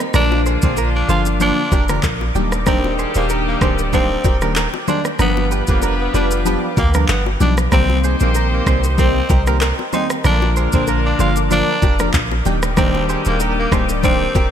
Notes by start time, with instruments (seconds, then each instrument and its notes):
Already playing: analog synth pad G4 C5 D#5 A#5
0.00 cross-stick, shaker
0.14 808-style bass A#1, synth keys D3 F3 A#3 D4, horn section F3 A#3 D4 F4, tenor saxophone D4, clean electric guitar F4 A#4, analog synth pad A#4 D5 F5 D6, cross-stick, low conga, shaker
0.32 low bongo
0.46 clean electric guitar G#4 C5, shaker
0.62 808-style bass A#1, synth keys D3 F3 A#3 D4, tenor saxophone C4, clean electric guitar G#4 C5, kick, shaker
0.77 clean electric guitar F4 A#4, high bongo, shaker
0.96 tenor saxophone D4
1.09 808-style bass G1, synth keys D3 F3 A#3 D4, tenor saxophone F4, clean electric guitar G#4 C5, high bongo, shaker
1.26 high bongo, shaker
1.40 synth keys D3 F3 A#3 D4, tenor saxophone D4, clean electric guitar F4 C5, low conga, shaker
1.72 808-style bass F1, clean electric guitar G4 A#4, kick, low bongo, shaker
1.89 synth keys D3 F3 A#3 D4, clean electric guitar G4 A#4, cross-stick, shaker
2.03 808-style bass A#1, kick, clap, high bongo, shaker
2.21 low bongo
2.35 808-style bass D#1, synth keys D#3 G3 A#3 D4, horn section G3 D#4 G4, clean electric guitar D#4 G4, analog synth pad D5 G5, low bongo, low conga, shaker
2.52 cross-stick, shaker
2.66 synth keys D#3 G3 A#3 D4, tenor saxophone C4, clean electric guitar G4 A#4, kick, cross-stick, low conga, shaker
2.84 low bongo
2.99 clean electric guitar G#4 C5, shaker
3.15 808-style bass D#1, synth keys D#3 G3 A#3 D4, tenor saxophone A#3, clean electric guitar G#4 C5, shaker
3.29 clean electric guitar G4 A#4, high bongo, shaker
3.48 tenor saxophone A#3
3.61 808-style bass D1, synth keys D#3 G3 A#3 D4, tenor saxophone C4, clean electric guitar G#4 C5, kick, cross-stick, high bongo, shaker
3.78 high bongo, shaker
3.93 synth keys D#3 G3 A#3 D4, tenor saxophone C4, clean electric guitar G4 C5, kick, low conga, shaker
4.24 808-style bass D#1, clean electric guitar G4 A#4, kick, low bongo, shaker
4.41 synth keys D#3 G3 A#3 D4, clean electric guitar G4 A#4, cross-stick, shaker
4.56 clean electric guitar G4 A#4, clap, high bongo, shaker
4.74 low bongo
4.88 synth keys D#3 G3 A#3 D4, tenor saxophone D4, clean electric guitar G#4 C5, low bongo, low conga, shaker
5.05 cross-stick, shaker
5.19 808-style bass G1, synth keys F3 G3 B3 D4, horn section B3 F4 G4 B4, tenor saxophone B3, clean electric guitar G4 A#4, analog synth pad B4 F5 D6, cross-stick, low conga, shaker
5.37 low bongo
5.52 clean electric guitar G4 B4, shaker
5.67 808-style bass F1, synth keys F3 G3 B3 D4, tenor saxophone A#3, clean electric guitar G4 B4, kick, shaker
5.82 clean electric guitar G4 A#4, high bongo, shaker
6.01 tenor saxophone B3
6.14 808-style bass F1, synth keys F3 G3 B3 D4, tenor saxophone D4, clean electric guitar G4 B4, high bongo, shaker
6.31 high bongo, shaker
6.45 synth keys F3 G3 B3 D4, clean electric guitar G4 B4, low conga, shaker
6.77 808-style bass D2, tenor saxophone A#3, clean electric guitar G4 A#4, kick, low bongo, shaker
6.94 synth keys F3 G3 B3 D4, clean electric guitar G4 A#4, cross-stick, shaker
7.08 808-style bass G1, tenor saxophone B3, clap, high bongo, shaker
7.26 low bongo
7.40 808-style bass B1, synth keys F3 G3 B3 D4, tenor saxophone D4, clean electric guitar D#4 G4, low bongo, low conga, shaker
7.58 cross-stick, shaker
7.72 808-style bass C2, synth keys D#3 G3 A#3 C4, horn section C4 D#4 G4 C5, tenor saxophone C4, clean electric guitar G4 A#4, analog synth pad A#4 D#5 G5 C6, kick, cross-stick, low conga, shaker
7.90 low bongo
8.04 clean electric guitar G#4 C5, shaker
8.20 808-style bass A#1, synth keys D#3 G3 A#3 C4, tenor saxophone A#3, clean electric guitar G#4 C5, shaker
8.35 clean electric guitar G4 A#4, high bongo, shaker
8.54 tenor saxophone A#3
8.66 808-style bass C2, synth keys D#3 G3 A#3 C4, tenor saxophone C4, clean electric guitar G#4 C5, kick, cross-stick, high bongo, shaker
8.84 high bongo, shaker
8.98 synth keys D#3 G3 A#3 C4, tenor saxophone C4, clean electric guitar G4 C5, kick, low conga, shaker
9.30 808-style bass C2, clean electric guitar G4 A#4, kick, low bongo, shaker
9.47 synth keys D#3 G3 A#3 C4, clean electric guitar G4 A#4, cross-stick, shaker
9.61 clean electric guitar G4 A#4, clap, high bongo, shaker
9.79 low bongo
9.92 synth keys D#3 G3 A#3 C4, tenor saxophone D#4, clean electric guitar G#4 C5, low bongo, low conga, shaker
10.10 cross-stick, shaker
10.24 808-style bass A#1, synth keys D3 F3 A#3 D4, horn section A#3 D4 F4 A#4, tenor saxophone D4, clean electric guitar F4 A#4, analog synth pad D5 F5 D6, cross-stick, low conga, shaker
10.42 low bongo
10.57 clean electric guitar G#4 C5, shaker
10.73 808-style bass A#1, synth keys D3 F3 A#3 D4, tenor saxophone C4, clean electric guitar G#4 C5, kick, shaker
10.87 clean electric guitar F4 A#4, high bongo, shaker
11.06 tenor saxophone D4
11.19 808-style bass G1, synth keys D3 F3 A#3 D4, tenor saxophone F4, clean electric guitar G#4 C5, high bongo, shaker
11.36 high bongo, shaker
11.50 synth keys D3 F3 A#3 D4, tenor saxophone D4, clean electric guitar F4 C5, low conga, shaker
11.82 808-style bass F1, clean electric guitar G4 A#4, kick, low bongo, shaker
11.99 synth keys D3 F3 A#3 D4, clean electric guitar G4 A#4, cross-stick, shaker
12.13 808-style bass A#1, kick, clap, high bongo, shaker
12.31 low bongo
12.45 808-style bass D#1, synth keys D#3 G3 A#3 D4, horn section G3 D#4 G4, clean electric guitar D#4 G4, analog synth pad D5 G5 D6, low bongo, low conga, shaker
12.63 cross-stick, shaker
12.77 synth keys D#3 G3 A#3 D4, tenor saxophone C4, clean electric guitar G4 A#4, kick, cross-stick, low conga, shaker
12.95 low bongo
13.09 clean electric guitar G#4 C5, shaker
13.25 808-style bass D#1, synth keys D#3 G3 A#3 D4, tenor saxophone A#3, clean electric guitar G#4 C5, shaker
13.40 clean electric guitar G4 A#4, high bongo, shaker
13.59 tenor saxophone A#3
13.72 808-style bass D1, synth keys D#3 G3 A#3 D4, tenor saxophone C4, clean electric guitar G#4 C5, kick, cross-stick, high bongo, shaker
13.89 high bongo, shaker
14.03 synth keys D#3 G3 A#3 D4, tenor saxophone C4, clean electric guitar G4 C5, kick, low conga, shaker
14.35 808-style bass D#1, clean electric guitar G4 A#4, kick, low bongo, shaker